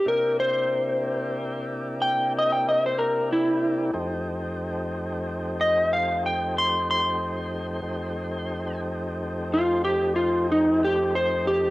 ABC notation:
X:1
M:12/8
L:1/16
Q:3/8=61
K:F
V:1 name="Electric slide guitar"
B2 c8 z2 g2 _e g e c B2 =E4 | z8 z2 _e2 f2 g2 c'2 c'6- | c'6 z4 F2 G2 F2 _E2 G2 c2 G2 |]
V:2 name="Tonewheel organ"
[C,B,DEG]24 | [F,,A,C_EG]24 | [F,,A,C_EG]24 |]